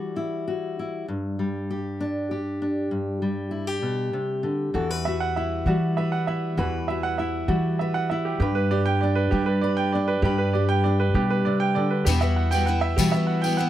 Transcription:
0.00 1.04 E3 medium
0.00 1.39 G3 soft
0.00 0.46 F#4 soft
0.16 0.77 E4 soft
0.48 1.05 F#4 soft
0.79 1.05 E4 soft
1.08 2.90 G2 medium
1.39 3.21 G3 soft
1.71 2.31 G4 soft
2.01 2.61 D4 soft
2.31 3.51 G4 soft
2.62 2.88 D4 soft
2.91 3.82 G2 medium
3.22 5.66 G3 soft
3.51 3.67 E4 soft
3.67 4.75 G4 soft
3.82 4.13 B2 soft
4.13 4.44 C3 medium
4.43 4.73 D3 soft
4.74 5.62 E2 medium
4.74 6.54 E3 medium
4.74 5.36 F#4 medium
4.74 4.90 A4 medium
4.90 5.97 B4 soft
5.05 5.67 F#4 medium
5.05 5.35 E5 medium
5.20 5.82 F#5 medium
5.36 6.27 E4 soft
5.36 5.95 E5 medium
5.66 6.54 E3 medium
5.66 7.48 G3 medium
5.66 6.28 F#4 medium
5.66 6.55 F#4 soft
5.97 6.58 B4 soft
5.97 6.26 E5 medium
6.12 6.73 F#5 medium
6.27 6.55 E4 soft
6.27 6.86 E5 medium
6.57 7.45 E2 medium
6.57 8.38 E3 medium
6.57 7.19 F#4 medium
6.57 7.81 B4 medium
6.88 7.47 F#4 soft
6.88 7.17 E5 medium
7.03 7.65 F#5 medium
7.18 8.10 E4 soft
7.18 7.78 E5 medium
7.48 8.37 E3 medium
7.48 9.31 G3 medium
7.48 8.10 F#4 medium
7.48 8.37 F#4 medium
7.79 8.42 B4 medium
7.79 8.08 E5 medium
7.94 8.41 F#5 medium
8.10 8.38 E4 soft
8.10 8.41 E5 medium
8.25 8.38 G4 medium
8.40 9.28 G2 medium
8.40 10.23 G2 medium
8.40 9.02 G4 medium
8.40 9.63 B4 medium
8.55 9.14 B4 medium
8.71 9.32 G4 medium
8.71 8.99 D5 medium
8.86 9.47 G5 medium
9.01 9.94 D4 soft
9.01 9.60 D5 medium
9.15 9.44 B4 medium
9.31 12.07 G3 medium
9.31 10.20 G3 medium
9.31 9.93 G4 medium
9.31 10.55 G4 medium
9.46 10.06 B4 medium
9.61 10.25 B4 medium
9.61 9.91 D5 medium
9.77 10.39 G5 medium
9.92 10.21 D4 soft
9.92 10.52 D5 medium
10.08 10.37 B4 medium
10.22 11.11 G2 medium
10.22 11.15 G2 medium
10.22 10.84 G4 medium
10.22 12.04 B4 medium
10.38 10.98 B4 medium
10.53 12.04 G4 medium
10.53 10.82 D5 medium
10.69 11.30 G5 medium
10.84 12.04 D4 medium
10.84 11.44 D5 medium
11.00 11.29 B4 medium
11.14 11.46 B2 medium
11.14 12.03 G3 medium
11.14 11.76 G4 medium
11.30 11.89 B4 medium
11.45 11.77 C3 medium
11.45 11.74 D5 medium
11.60 12.06 G5 medium
11.75 12.07 D3 medium
11.75 12.06 D5 medium
11.90 12.06 B4 medium
12.05 12.94 E2 medium
12.05 12.22 E2 medium
12.05 12.22 B2 medium
12.05 12.23 G3 medium
12.05 12.22 B3 medium
12.05 12.21 E4 medium
12.05 12.20 F#4 medium
12.05 12.67 G4 medium
12.05 tambourine medium
12.21 12.54 G3 soft
12.21 12.52 B3 soft
12.21 12.51 E4 soft
12.21 12.50 F#4 soft
12.21 12.80 E5 medium
12.21 tambourine soft
12.36 12.65 F#5 medium
12.51 12.66 G3 soft
12.51 12.67 B3 soft
12.51 12.68 E4 medium
12.51 12.68 F#4 medium
12.51 13.13 G5 medium
12.51 tambourine medium
12.66 12.98 G3 soft
12.66 12.98 B3 medium
12.66 12.98 E4 medium
12.66 13.25 F#5 medium
12.81 13.10 E5 medium
12.96 13.13 E2 medium
12.96 13.14 B2 medium
12.96 13.70 E3 medium
12.96 13.14 G3 medium
12.96 13.14 B3 medium
12.96 13.13 E4 medium
12.96 13.12 F#4 medium
12.96 13.58 G4 medium
12.96 tambourine medium
13.12 13.44 B3 soft
13.12 13.44 E4 medium
13.12 13.42 F#4 soft
13.12 13.70 E5 medium
13.16 13.46 G3 soft
13.27 13.56 F#5 medium
13.42 13.58 B3 soft
13.42 13.59 E4 soft
13.42 13.59 F#4 soft
13.42 13.70 G5 medium
13.42 tambourine medium
13.47 13.57 G3 soft
13.57 13.70 G3 medium
13.57 13.70 B3 medium
13.57 13.70 E4 medium
13.57 13.70 F#5 medium

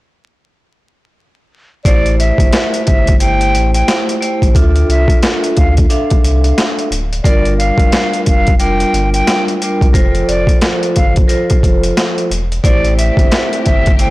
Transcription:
1.85 2.32 A1 loud
1.85 3.11 A3 medium
1.85 3.12 E4 medium
1.85 3.12 G4 medium
1.85 3.12 C5 loud
1.85 2.15 D5 loud
1.85 kick loud
1.85 closed hi-hat loud
2.06 closed hi-hat soft
2.19 2.83 E5 medium
2.19 closed hi-hat medium
2.38 2.50 G1 loud
2.38 kick loud
2.38 closed hi-hat medium
2.53 snare loud
2.53 snare medium
2.53 closed hi-hat medium
2.74 closed hi-hat medium
2.86 3.56 G1 loud
2.86 3.16 E5 medium
2.86 kick medium
2.86 closed hi-hat medium
3.07 kick loud
3.07 closed hi-hat medium
3.20 4.15 A3 medium
3.20 4.15 E4 medium
3.20 4.15 G4 medium
3.20 4.15 C5 loud
3.20 3.71 G5 loud
3.20 closed hi-hat loud
3.41 closed hi-hat medium
3.54 3.83 A1 medium
3.54 closed hi-hat medium
3.74 4.04 G5 medium
3.74 closed hi-hat medium
3.88 snare loud
3.88 closed hi-hat loud
4.09 closed hi-hat soft
4.20 4.52 A3 medium
4.20 4.52 E4 medium
4.20 4.53 G4 medium
4.20 4.53 C5 medium
4.20 closed hi-hat medium
4.42 4.53 A1 medium
4.42 kick medium
4.42 closed hi-hat soft
4.55 4.84 D2 loud
4.55 5.81 D4 medium
4.55 5.81 F4 loud
4.55 5.81 A4 medium
4.55 5.81 E5 medium
4.55 kick loud
4.55 closed hi-hat loud
4.76 closed hi-hat soft
4.89 5.06 C2 medium
4.89 5.19 E5 medium
4.89 closed hi-hat medium
5.08 kick loud
5.08 closed hi-hat medium
5.23 snare loud
5.23 snare medium
5.23 closed hi-hat medium
5.44 closed hi-hat soft
5.57 5.86 D2 medium
5.57 5.75 F5 medium
5.57 kick medium
5.57 closed hi-hat medium
5.77 kick loud
5.77 closed hi-hat medium
5.89 6.84 D4 medium
5.89 6.84 A4 medium
5.89 6.85 E5 medium
5.89 6.85 F5 loud
5.89 closed hi-hat medium
6.10 kick medium
6.10 closed hi-hat medium
6.24 6.52 C2 medium
6.24 closed hi-hat medium
6.44 closed hi-hat medium
6.58 snare loud
6.58 closed hi-hat loud
6.79 closed hi-hat soft
6.91 7.20 D1 loud
6.91 closed hi-hat medium
7.13 closed hi-hat soft
7.23 7.71 G1 loud
7.23 8.51 G3 loud
7.23 8.51 D4 medium
7.23 8.51 F4 medium
7.23 8.51 A#4 loud
7.23 7.54 D5 loud
7.23 kick loud
7.23 closed hi-hat loud
7.45 closed hi-hat soft
7.58 8.22 F5 medium
7.58 closed hi-hat medium
7.78 7.90 F1 loud
7.78 kick loud
7.78 closed hi-hat medium
7.92 snare loud
7.92 snare medium
7.92 closed hi-hat medium
8.13 closed hi-hat soft
8.26 8.84 F1 loud
8.26 8.57 F5 medium
8.26 kick medium
8.26 closed hi-hat medium
8.47 kick loud
8.47 closed hi-hat medium
8.59 9.54 G3 medium
8.59 9.54 D4 medium
8.59 9.54 F4 medium
8.59 9.55 A#4 loud
8.59 9.10 G5 medium
8.59 closed hi-hat medium
8.80 closed hi-hat medium
8.93 9.22 G1 medium
8.93 closed hi-hat medium
9.13 9.44 G5 medium
9.13 closed hi-hat medium
9.27 snare loud
9.27 snare medium
9.27 closed hi-hat loud
9.48 closed hi-hat soft
9.62 9.93 G3 medium
9.62 9.93 D4 medium
9.62 9.92 F4 medium
9.62 9.93 A#4 medium
9.62 closed hi-hat medium
9.81 9.93 C2 medium
9.81 kick medium
9.81 closed hi-hat soft
9.93 10.23 F1 loud
9.93 11.20 F3 loud
9.93 11.20 F4 medium
9.93 11.20 A4 medium
9.93 11.20 C5 loud
9.93 kick loud
9.93 closed hi-hat loud
10.15 closed hi-hat soft
10.28 10.45 F1 medium
10.28 10.58 D5 medium
10.28 closed hi-hat medium
10.47 kick loud
10.47 closed hi-hat medium
10.61 snare loud
10.61 snare medium
10.61 closed hi-hat medium
10.83 closed hi-hat soft
10.96 11.25 G1 loud
10.96 11.14 F5 medium
10.96 kick medium
10.96 closed hi-hat medium
11.16 kick loud
11.16 closed hi-hat medium
11.28 12.23 F3 medium
11.28 12.23 F4 medium
11.28 12.23 A4 medium
11.28 12.23 C5 loud
11.28 closed hi-hat loud
11.50 kick medium
11.50 closed hi-hat medium
11.63 11.92 F1 medium
11.63 kick medium
11.63 closed hi-hat medium
11.83 closed hi-hat medium
11.97 snare loud
11.97 closed hi-hat loud
12.18 closed hi-hat soft
12.30 12.59 E1 loud
12.30 closed hi-hat medium
12.52 closed hi-hat soft
12.64 13.10 A1 loud
12.64 14.10 C3 medium
12.64 13.90 A3 loud
12.64 14.10 A3 medium
12.64 13.90 E4 medium
12.64 14.10 G4 medium
12.64 13.90 G4 medium
12.64 13.90 C5 loud
12.64 12.94 D5 loud
12.64 kick loud
12.64 closed hi-hat loud
12.85 closed hi-hat soft
12.98 13.61 E5 medium
12.98 closed hi-hat medium
13.17 13.29 G1 medium
13.17 kick loud
13.17 closed hi-hat medium
13.32 snare loud
13.32 snare medium
13.32 closed hi-hat medium
13.53 closed hi-hat soft
13.65 14.10 G1 loud
13.65 13.95 E5 medium
13.65 kick medium
13.65 closed hi-hat medium
13.86 kick loud
13.86 closed hi-hat medium
13.99 14.10 A3 medium
13.99 14.10 E4 medium
13.99 14.10 G4 medium
13.99 14.10 C5 loud
13.99 14.10 G5 loud
13.99 closed hi-hat medium

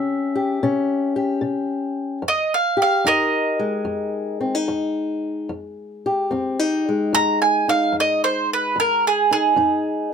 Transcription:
0.00 0.56 C3 medium
0.00 0.61 C#4 medium
0.00 0.34 G4 medium
0.00 1.37 E5 medium
0.36 1.15 G4 medium
0.63 1.38 C3 medium
0.63 2.22 C#4 medium
1.16 2.21 G4 medium
1.41 2.18 C3 medium
2.22 2.99 F2 medium
2.28 2.52 D#5 medium
2.54 2.79 F5 medium
2.77 5.52 G4 medium
2.82 3.06 F5 medium
3.04 3.81 F2 medium
3.04 4.40 D#4 medium
3.04 4.65 A#4 medium
3.04 4.66 D#5 medium
3.59 6.88 G#3 medium
3.85 4.62 F2 medium
4.41 4.55 C4 soft
4.55 5.50 D#4 soft
4.68 5.44 F2 medium
5.49 6.26 F2 medium
6.06 8.79 G4 medium
6.31 7.08 F2 medium
6.31 6.59 C4 medium
6.59 7.67 D#4 soft
6.89 10.12 G#3 medium
7.13 7.89 F2 medium
7.13 7.40 A#5 loud
7.42 7.67 G#5 medium
7.68 8.79 D#4 medium
7.68 7.95 F5 medium
7.92 8.70 F2 medium
8.00 8.24 D#5 medium
8.24 8.49 C5 medium
8.53 8.78 B4 medium
8.76 9.52 F2 medium
8.80 9.04 A#4 medium
9.07 9.32 G#4 medium
9.31 9.57 D#4 medium
9.31 10.13 G#4 medium
9.56 10.13 F2 medium
9.56 10.13 D#4 medium

